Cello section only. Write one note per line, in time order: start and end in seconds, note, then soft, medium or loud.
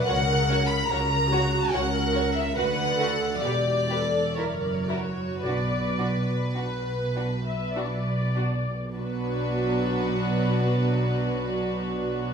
0.06 0.79 C#3 medium
0.89 1.62 C#3 medium
1.73 2.46 C#3 medium
2.57 3.32 D3 medium
3.42 4.24 E2 medium
4.36 5.29 F#2 soft
5.42 6.41 B2 soft
6.55 7.59 B2 soft
7.73 8.81 B2 soft
8.95 12.34 B2 soft